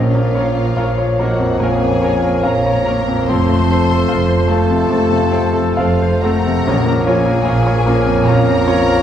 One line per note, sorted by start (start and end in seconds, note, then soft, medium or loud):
0.00 0.68 A#1 soft
0.00 1.57 A#1 soft
0.00 0.68 A#2 soft
0.00 3.25 F3 soft
0.00 0.26 A#3 soft
0.00 0.25 C#4 soft
0.00 1.20 F4 soft
0.00 3.31 A#4 soft
0.00 1.22 C#5 soft
0.00 3.26 C#5 soft
0.00 1.20 F5 soft
0.15 0.49 A#3 soft
0.35 0.44 C#4 soft
0.35 0.44 A#4 soft
0.35 0.69 C#5 soft
0.58 0.91 A#4 soft
0.77 1.52 A#1 soft
0.77 1.52 A#2 soft
0.77 0.86 C#4 soft
0.77 0.86 A#4 soft
0.77 1.11 F5 soft
0.98 1.32 C#5 soft
1.19 1.53 A#3 soft
1.19 1.29 C#4 soft
1.19 1.60 F#4 soft
1.19 1.29 A#4 soft
1.19 1.61 D#5 soft
1.19 1.61 F#5 soft
1.39 1.73 F2 soft
1.60 2.34 A#1 soft
1.60 2.34 A#2 soft
1.60 1.94 A#3 soft
1.60 1.93 A#3 soft
1.60 1.70 C#4 soft
1.60 1.93 C#4 soft
1.60 2.44 G#4 medium
1.60 1.70 A#4 soft
1.60 2.43 F5 soft
1.60 2.44 G#5 soft
1.80 2.14 F2 soft
2.02 2.11 C#4 soft
2.02 2.11 A#4 soft
2.02 2.35 C#5 soft
2.23 2.57 A#4 soft
2.43 3.19 A#1 soft
2.43 3.19 A#2 soft
2.43 2.52 C#4 soft
2.43 2.52 A#4 soft
2.43 3.29 A#4 soft
2.43 2.78 F5 soft
2.43 3.31 F5 soft
2.43 3.29 A#5 medium
2.66 3.00 C#5 soft
2.86 3.20 A#3 soft
2.86 2.95 C#4 soft
2.86 2.95 A#4 soft
3.07 3.27 F2 soft
3.28 4.01 F1 soft
3.28 4.86 F2 soft
3.28 4.01 F2 soft
3.28 6.35 F3 soft
3.28 3.59 A3 soft
3.28 3.59 C4 soft
3.28 3.38 C4 soft
3.28 6.38 A4 soft
3.28 3.38 A4 soft
3.28 4.49 C5 medium
3.28 6.35 C5 soft
3.28 4.52 A5 medium
3.28 4.47 C6 medium
3.49 3.82 A3 soft
3.70 3.78 C4 soft
3.70 3.79 A4 soft
3.70 4.02 C5 soft
3.90 4.22 A4 soft
4.09 4.80 F1 soft
4.09 4.80 F2 soft
4.09 4.19 C4 soft
4.09 4.19 A4 soft
4.09 4.41 F5 soft
4.29 4.61 C5 soft
4.48 4.81 A3 soft
4.48 4.58 C4 soft
4.48 5.76 A4 medium
4.48 4.58 A4 soft
4.48 5.48 F5 medium
4.48 5.76 A5 medium
4.71 5.02 C3 soft
4.89 5.66 F1 soft
4.89 5.65 F2 soft
4.89 5.20 A3 soft
4.89 5.23 A3 soft
4.89 4.97 C4 soft
4.89 5.20 C4 soft
4.89 4.97 A4 soft
5.10 5.44 C3 soft
5.31 5.39 C4 soft
5.31 5.39 A4 soft
5.31 5.68 C5 soft
5.53 5.91 A4 soft
5.76 6.56 F1 soft
5.76 6.56 F2 soft
5.76 5.86 C4 soft
5.76 6.22 F4 soft
5.76 5.86 A4 soft
5.76 6.24 C5 soft
5.76 6.23 F5 medium
5.76 6.14 F5 soft
6.02 6.38 C5 soft
6.22 6.58 A3 soft
6.22 6.32 C4 soft
6.22 6.32 A4 soft
6.22 7.06 A#4 medium
6.22 7.07 F#5 medium
6.22 7.06 A#5 medium
6.47 6.67 C3 soft
6.65 7.36 A#1 soft
6.65 8.23 A#1 soft
6.65 7.37 A#2 medium
6.65 7.83 A#2 medium
6.65 9.03 F3 soft
6.65 6.96 F3 soft
6.65 6.74 C#4 soft
6.65 6.96 C#4 soft
6.65 6.74 F4 soft
6.65 9.03 A#4 soft
6.65 9.03 C#5 soft
6.85 7.18 A#3 soft
7.06 7.15 C#4 soft
7.06 7.15 F4 soft
7.06 8.26 G#4 medium
7.06 7.39 C#5 soft
7.06 8.00 F5 medium
7.06 8.24 G#5 medium
7.26 7.58 A#4 soft
7.45 8.16 A#1 medium
7.45 8.17 A#2 medium
7.45 7.56 C#4 soft
7.45 7.55 F4 soft
7.45 7.78 F5 soft
7.67 7.98 C#5 soft
7.86 8.18 A#3 soft
7.86 7.95 C#4 soft
7.86 7.96 F4 soft
8.06 8.38 F2 soft
8.25 8.96 A#1 medium
8.25 8.96 A#2 medium
8.25 8.56 F3 soft
8.25 8.57 A#3 soft
8.25 8.35 C#4 soft
8.25 8.56 C#4 soft
8.25 8.35 F4 soft
8.25 9.03 A#4 medium
8.25 9.03 F5 medium
8.25 9.03 A#5 medium
8.47 8.78 F2 soft
8.66 8.74 C#4 soft
8.66 8.74 F4 soft
8.66 8.98 C#5 soft
8.86 9.03 A#4 soft